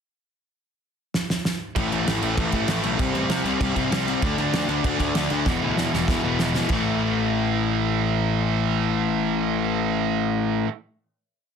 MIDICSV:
0, 0, Header, 1, 4, 480
1, 0, Start_track
1, 0, Key_signature, 0, "minor"
1, 0, Tempo, 308325
1, 817, Time_signature, 4, 2, 24, 8
1, 17989, End_track
2, 0, Start_track
2, 0, Title_t, "Overdriven electric guitar"
2, 0, Program_c, 0, 29
2, 2740, Note_on_c, 0, 45, 89
2, 2753, Note_on_c, 0, 52, 93
2, 2762, Note_on_c, 0, 57, 98
2, 2963, Note_off_c, 0, 57, 0
2, 2982, Note_on_c, 0, 57, 92
2, 2983, Note_off_c, 0, 52, 0
2, 2985, Note_off_c, 0, 45, 0
2, 2990, Note_on_c, 0, 52, 88
2, 3004, Note_on_c, 0, 45, 78
2, 3197, Note_off_c, 0, 45, 0
2, 3214, Note_off_c, 0, 57, 0
2, 3215, Note_on_c, 0, 45, 95
2, 3218, Note_off_c, 0, 52, 0
2, 3224, Note_on_c, 0, 52, 93
2, 3233, Note_on_c, 0, 57, 106
2, 3441, Note_off_c, 0, 57, 0
2, 3457, Note_off_c, 0, 52, 0
2, 3459, Note_on_c, 0, 57, 93
2, 3465, Note_off_c, 0, 45, 0
2, 3475, Note_on_c, 0, 52, 84
2, 3484, Note_on_c, 0, 45, 67
2, 3683, Note_off_c, 0, 45, 0
2, 3694, Note_off_c, 0, 52, 0
2, 3702, Note_on_c, 0, 45, 98
2, 3703, Note_off_c, 0, 57, 0
2, 3712, Note_on_c, 0, 52, 100
2, 3722, Note_on_c, 0, 57, 114
2, 3937, Note_off_c, 0, 57, 0
2, 3947, Note_off_c, 0, 52, 0
2, 3952, Note_off_c, 0, 45, 0
2, 3955, Note_on_c, 0, 57, 90
2, 3966, Note_on_c, 0, 52, 88
2, 3971, Note_on_c, 0, 45, 76
2, 4163, Note_off_c, 0, 45, 0
2, 4170, Note_off_c, 0, 52, 0
2, 4180, Note_off_c, 0, 57, 0
2, 4182, Note_on_c, 0, 45, 90
2, 4189, Note_on_c, 0, 52, 106
2, 4199, Note_on_c, 0, 57, 115
2, 4395, Note_off_c, 0, 57, 0
2, 4402, Note_off_c, 0, 52, 0
2, 4414, Note_on_c, 0, 57, 90
2, 4418, Note_off_c, 0, 45, 0
2, 4421, Note_on_c, 0, 52, 86
2, 4436, Note_on_c, 0, 45, 72
2, 4636, Note_off_c, 0, 45, 0
2, 4642, Note_on_c, 0, 48, 104
2, 4644, Note_off_c, 0, 57, 0
2, 4646, Note_off_c, 0, 52, 0
2, 4652, Note_on_c, 0, 55, 99
2, 4668, Note_on_c, 0, 60, 110
2, 4868, Note_off_c, 0, 60, 0
2, 4884, Note_off_c, 0, 55, 0
2, 4886, Note_on_c, 0, 60, 97
2, 4888, Note_off_c, 0, 48, 0
2, 4903, Note_on_c, 0, 55, 86
2, 4906, Note_on_c, 0, 48, 79
2, 5113, Note_off_c, 0, 48, 0
2, 5128, Note_off_c, 0, 55, 0
2, 5131, Note_on_c, 0, 48, 93
2, 5134, Note_off_c, 0, 60, 0
2, 5147, Note_on_c, 0, 55, 95
2, 5152, Note_on_c, 0, 60, 110
2, 5349, Note_off_c, 0, 60, 0
2, 5359, Note_off_c, 0, 55, 0
2, 5367, Note_on_c, 0, 60, 94
2, 5372, Note_off_c, 0, 48, 0
2, 5377, Note_on_c, 0, 55, 82
2, 5390, Note_on_c, 0, 48, 72
2, 5585, Note_off_c, 0, 48, 0
2, 5597, Note_off_c, 0, 55, 0
2, 5601, Note_off_c, 0, 60, 0
2, 5603, Note_on_c, 0, 48, 87
2, 5616, Note_on_c, 0, 55, 98
2, 5620, Note_on_c, 0, 60, 117
2, 5832, Note_off_c, 0, 60, 0
2, 5844, Note_off_c, 0, 55, 0
2, 5851, Note_on_c, 0, 60, 92
2, 5855, Note_off_c, 0, 48, 0
2, 5862, Note_on_c, 0, 55, 84
2, 5874, Note_on_c, 0, 48, 70
2, 6068, Note_off_c, 0, 48, 0
2, 6080, Note_off_c, 0, 55, 0
2, 6086, Note_on_c, 0, 48, 102
2, 6088, Note_off_c, 0, 60, 0
2, 6099, Note_on_c, 0, 55, 101
2, 6107, Note_on_c, 0, 60, 99
2, 6322, Note_off_c, 0, 60, 0
2, 6326, Note_off_c, 0, 55, 0
2, 6334, Note_off_c, 0, 48, 0
2, 6341, Note_on_c, 0, 60, 97
2, 6344, Note_on_c, 0, 55, 90
2, 6353, Note_on_c, 0, 48, 77
2, 6562, Note_off_c, 0, 48, 0
2, 6568, Note_on_c, 0, 50, 100
2, 6571, Note_off_c, 0, 55, 0
2, 6572, Note_off_c, 0, 60, 0
2, 6578, Note_on_c, 0, 57, 105
2, 6592, Note_on_c, 0, 62, 112
2, 6800, Note_off_c, 0, 62, 0
2, 6817, Note_off_c, 0, 57, 0
2, 6818, Note_on_c, 0, 62, 102
2, 6824, Note_off_c, 0, 50, 0
2, 6836, Note_on_c, 0, 57, 86
2, 6843, Note_on_c, 0, 50, 82
2, 7043, Note_off_c, 0, 50, 0
2, 7057, Note_off_c, 0, 57, 0
2, 7062, Note_on_c, 0, 50, 95
2, 7071, Note_off_c, 0, 62, 0
2, 7076, Note_on_c, 0, 57, 100
2, 7090, Note_on_c, 0, 62, 112
2, 7279, Note_off_c, 0, 62, 0
2, 7287, Note_off_c, 0, 57, 0
2, 7297, Note_on_c, 0, 62, 91
2, 7299, Note_off_c, 0, 50, 0
2, 7305, Note_on_c, 0, 57, 84
2, 7318, Note_on_c, 0, 50, 77
2, 7518, Note_off_c, 0, 50, 0
2, 7528, Note_off_c, 0, 57, 0
2, 7537, Note_on_c, 0, 50, 95
2, 7539, Note_off_c, 0, 62, 0
2, 7547, Note_on_c, 0, 57, 104
2, 7558, Note_on_c, 0, 62, 104
2, 7756, Note_off_c, 0, 62, 0
2, 7765, Note_off_c, 0, 57, 0
2, 7773, Note_off_c, 0, 50, 0
2, 7775, Note_on_c, 0, 62, 89
2, 7784, Note_on_c, 0, 57, 79
2, 7792, Note_on_c, 0, 50, 74
2, 8003, Note_off_c, 0, 50, 0
2, 8015, Note_off_c, 0, 57, 0
2, 8022, Note_off_c, 0, 62, 0
2, 8022, Note_on_c, 0, 50, 101
2, 8033, Note_on_c, 0, 57, 108
2, 8041, Note_on_c, 0, 62, 109
2, 8252, Note_off_c, 0, 62, 0
2, 8260, Note_off_c, 0, 57, 0
2, 8271, Note_on_c, 0, 62, 102
2, 8273, Note_off_c, 0, 50, 0
2, 8279, Note_on_c, 0, 57, 90
2, 8292, Note_on_c, 0, 50, 71
2, 8501, Note_off_c, 0, 62, 0
2, 8503, Note_on_c, 0, 40, 94
2, 8504, Note_off_c, 0, 57, 0
2, 8508, Note_off_c, 0, 50, 0
2, 8515, Note_on_c, 0, 47, 105
2, 8523, Note_on_c, 0, 52, 109
2, 8731, Note_off_c, 0, 52, 0
2, 8745, Note_off_c, 0, 47, 0
2, 8750, Note_on_c, 0, 52, 89
2, 8754, Note_off_c, 0, 40, 0
2, 8764, Note_on_c, 0, 47, 93
2, 8773, Note_on_c, 0, 40, 84
2, 8967, Note_off_c, 0, 40, 0
2, 8984, Note_off_c, 0, 47, 0
2, 8985, Note_on_c, 0, 40, 90
2, 8993, Note_off_c, 0, 52, 0
2, 9002, Note_on_c, 0, 47, 105
2, 9012, Note_on_c, 0, 52, 92
2, 9223, Note_off_c, 0, 52, 0
2, 9233, Note_off_c, 0, 47, 0
2, 9240, Note_off_c, 0, 40, 0
2, 9242, Note_on_c, 0, 52, 93
2, 9251, Note_on_c, 0, 47, 77
2, 9259, Note_on_c, 0, 40, 70
2, 9446, Note_off_c, 0, 40, 0
2, 9452, Note_off_c, 0, 47, 0
2, 9465, Note_on_c, 0, 40, 91
2, 9469, Note_off_c, 0, 52, 0
2, 9470, Note_on_c, 0, 47, 89
2, 9488, Note_on_c, 0, 52, 111
2, 9693, Note_off_c, 0, 52, 0
2, 9704, Note_off_c, 0, 47, 0
2, 9711, Note_on_c, 0, 52, 92
2, 9717, Note_off_c, 0, 40, 0
2, 9723, Note_on_c, 0, 47, 77
2, 9736, Note_on_c, 0, 40, 76
2, 9936, Note_off_c, 0, 40, 0
2, 9944, Note_off_c, 0, 47, 0
2, 9953, Note_off_c, 0, 52, 0
2, 9954, Note_on_c, 0, 40, 86
2, 9963, Note_on_c, 0, 47, 90
2, 9972, Note_on_c, 0, 52, 106
2, 10176, Note_off_c, 0, 52, 0
2, 10185, Note_off_c, 0, 47, 0
2, 10192, Note_off_c, 0, 40, 0
2, 10195, Note_on_c, 0, 52, 89
2, 10203, Note_on_c, 0, 47, 83
2, 10210, Note_on_c, 0, 40, 77
2, 10406, Note_off_c, 0, 47, 0
2, 10412, Note_on_c, 0, 45, 95
2, 10424, Note_off_c, 0, 52, 0
2, 10432, Note_off_c, 0, 40, 0
2, 10448, Note_on_c, 0, 52, 94
2, 10470, Note_on_c, 0, 57, 98
2, 16595, Note_off_c, 0, 45, 0
2, 16613, Note_off_c, 0, 52, 0
2, 16623, Note_off_c, 0, 57, 0
2, 17989, End_track
3, 0, Start_track
3, 0, Title_t, "Picked electric bass"
3, 0, Program_c, 1, 34
3, 2744, Note_on_c, 1, 33, 96
3, 2908, Note_off_c, 1, 33, 0
3, 2995, Note_on_c, 1, 33, 90
3, 3155, Note_off_c, 1, 33, 0
3, 3215, Note_on_c, 1, 33, 86
3, 3382, Note_off_c, 1, 33, 0
3, 3464, Note_on_c, 1, 33, 96
3, 3628, Note_off_c, 1, 33, 0
3, 3699, Note_on_c, 1, 33, 97
3, 3865, Note_off_c, 1, 33, 0
3, 3936, Note_on_c, 1, 33, 89
3, 4104, Note_off_c, 1, 33, 0
3, 4182, Note_on_c, 1, 33, 97
3, 4348, Note_off_c, 1, 33, 0
3, 4418, Note_on_c, 1, 35, 86
3, 4586, Note_off_c, 1, 35, 0
3, 4662, Note_on_c, 1, 36, 91
3, 4829, Note_off_c, 1, 36, 0
3, 4883, Note_on_c, 1, 33, 88
3, 5056, Note_off_c, 1, 33, 0
3, 5122, Note_on_c, 1, 48, 88
3, 5296, Note_off_c, 1, 48, 0
3, 5354, Note_on_c, 1, 36, 90
3, 5532, Note_off_c, 1, 36, 0
3, 5609, Note_on_c, 1, 36, 99
3, 5782, Note_off_c, 1, 36, 0
3, 5862, Note_on_c, 1, 36, 97
3, 6031, Note_off_c, 1, 36, 0
3, 6087, Note_on_c, 1, 36, 93
3, 6428, Note_off_c, 1, 36, 0
3, 6572, Note_on_c, 1, 38, 95
3, 6745, Note_off_c, 1, 38, 0
3, 6828, Note_on_c, 1, 38, 97
3, 6996, Note_off_c, 1, 38, 0
3, 7051, Note_on_c, 1, 38, 90
3, 7225, Note_off_c, 1, 38, 0
3, 7289, Note_on_c, 1, 38, 93
3, 7464, Note_off_c, 1, 38, 0
3, 7545, Note_on_c, 1, 38, 95
3, 7715, Note_off_c, 1, 38, 0
3, 7774, Note_on_c, 1, 38, 99
3, 7948, Note_off_c, 1, 38, 0
3, 8026, Note_on_c, 1, 38, 90
3, 8196, Note_off_c, 1, 38, 0
3, 8271, Note_on_c, 1, 38, 89
3, 8504, Note_on_c, 1, 28, 99
3, 8528, Note_off_c, 1, 38, 0
3, 8676, Note_off_c, 1, 28, 0
3, 8757, Note_on_c, 1, 38, 89
3, 8924, Note_off_c, 1, 38, 0
3, 9003, Note_on_c, 1, 40, 88
3, 9168, Note_off_c, 1, 40, 0
3, 9244, Note_on_c, 1, 28, 93
3, 9409, Note_off_c, 1, 28, 0
3, 9467, Note_on_c, 1, 28, 92
3, 9638, Note_off_c, 1, 28, 0
3, 9727, Note_on_c, 1, 28, 89
3, 9891, Note_off_c, 1, 28, 0
3, 9955, Note_on_c, 1, 28, 88
3, 10290, Note_off_c, 1, 28, 0
3, 10431, Note_on_c, 1, 33, 96
3, 16542, Note_off_c, 1, 33, 0
3, 17989, End_track
4, 0, Start_track
4, 0, Title_t, "Drums"
4, 1779, Note_on_c, 9, 38, 74
4, 1934, Note_off_c, 9, 38, 0
4, 2024, Note_on_c, 9, 38, 84
4, 2180, Note_off_c, 9, 38, 0
4, 2260, Note_on_c, 9, 38, 94
4, 2415, Note_off_c, 9, 38, 0
4, 2737, Note_on_c, 9, 49, 83
4, 2740, Note_on_c, 9, 36, 106
4, 2892, Note_off_c, 9, 49, 0
4, 2896, Note_off_c, 9, 36, 0
4, 2990, Note_on_c, 9, 49, 64
4, 3145, Note_off_c, 9, 49, 0
4, 3230, Note_on_c, 9, 49, 86
4, 3236, Note_on_c, 9, 38, 107
4, 3386, Note_off_c, 9, 49, 0
4, 3392, Note_off_c, 9, 38, 0
4, 3462, Note_on_c, 9, 49, 64
4, 3617, Note_off_c, 9, 49, 0
4, 3696, Note_on_c, 9, 49, 88
4, 3698, Note_on_c, 9, 36, 123
4, 3851, Note_off_c, 9, 49, 0
4, 3854, Note_off_c, 9, 36, 0
4, 3926, Note_on_c, 9, 49, 69
4, 3936, Note_on_c, 9, 36, 90
4, 4082, Note_off_c, 9, 49, 0
4, 4091, Note_off_c, 9, 36, 0
4, 4167, Note_on_c, 9, 49, 89
4, 4174, Note_on_c, 9, 38, 115
4, 4323, Note_off_c, 9, 49, 0
4, 4329, Note_off_c, 9, 38, 0
4, 4414, Note_on_c, 9, 49, 69
4, 4570, Note_off_c, 9, 49, 0
4, 4658, Note_on_c, 9, 49, 88
4, 4659, Note_on_c, 9, 36, 108
4, 4813, Note_off_c, 9, 49, 0
4, 4815, Note_off_c, 9, 36, 0
4, 4902, Note_on_c, 9, 49, 65
4, 5058, Note_off_c, 9, 49, 0
4, 5130, Note_on_c, 9, 49, 79
4, 5136, Note_on_c, 9, 38, 112
4, 5285, Note_off_c, 9, 49, 0
4, 5292, Note_off_c, 9, 38, 0
4, 5380, Note_on_c, 9, 49, 61
4, 5535, Note_off_c, 9, 49, 0
4, 5615, Note_on_c, 9, 36, 114
4, 5617, Note_on_c, 9, 49, 84
4, 5771, Note_off_c, 9, 36, 0
4, 5773, Note_off_c, 9, 49, 0
4, 5853, Note_on_c, 9, 49, 64
4, 5855, Note_on_c, 9, 36, 91
4, 6009, Note_off_c, 9, 49, 0
4, 6010, Note_off_c, 9, 36, 0
4, 6104, Note_on_c, 9, 49, 84
4, 6110, Note_on_c, 9, 38, 119
4, 6260, Note_off_c, 9, 49, 0
4, 6266, Note_off_c, 9, 38, 0
4, 6347, Note_on_c, 9, 49, 62
4, 6503, Note_off_c, 9, 49, 0
4, 6572, Note_on_c, 9, 49, 78
4, 6576, Note_on_c, 9, 36, 114
4, 6728, Note_off_c, 9, 49, 0
4, 6731, Note_off_c, 9, 36, 0
4, 6819, Note_on_c, 9, 49, 61
4, 6975, Note_off_c, 9, 49, 0
4, 7057, Note_on_c, 9, 49, 83
4, 7064, Note_on_c, 9, 38, 115
4, 7213, Note_off_c, 9, 49, 0
4, 7219, Note_off_c, 9, 38, 0
4, 7294, Note_on_c, 9, 49, 64
4, 7450, Note_off_c, 9, 49, 0
4, 7540, Note_on_c, 9, 36, 118
4, 7541, Note_on_c, 9, 49, 85
4, 7696, Note_off_c, 9, 36, 0
4, 7697, Note_off_c, 9, 49, 0
4, 7779, Note_on_c, 9, 36, 87
4, 7783, Note_on_c, 9, 49, 68
4, 7935, Note_off_c, 9, 36, 0
4, 7938, Note_off_c, 9, 49, 0
4, 8015, Note_on_c, 9, 49, 88
4, 8021, Note_on_c, 9, 38, 115
4, 8171, Note_off_c, 9, 49, 0
4, 8177, Note_off_c, 9, 38, 0
4, 8250, Note_on_c, 9, 49, 65
4, 8406, Note_off_c, 9, 49, 0
4, 8499, Note_on_c, 9, 38, 66
4, 8501, Note_on_c, 9, 36, 112
4, 8655, Note_off_c, 9, 38, 0
4, 8656, Note_off_c, 9, 36, 0
4, 8989, Note_on_c, 9, 38, 78
4, 9145, Note_off_c, 9, 38, 0
4, 9243, Note_on_c, 9, 38, 72
4, 9399, Note_off_c, 9, 38, 0
4, 9464, Note_on_c, 9, 38, 94
4, 9465, Note_on_c, 9, 36, 119
4, 9620, Note_off_c, 9, 38, 0
4, 9621, Note_off_c, 9, 36, 0
4, 9949, Note_on_c, 9, 38, 103
4, 10105, Note_off_c, 9, 38, 0
4, 10189, Note_on_c, 9, 38, 95
4, 10345, Note_off_c, 9, 38, 0
4, 10410, Note_on_c, 9, 57, 86
4, 10425, Note_on_c, 9, 36, 103
4, 10566, Note_off_c, 9, 57, 0
4, 10581, Note_off_c, 9, 36, 0
4, 17989, End_track
0, 0, End_of_file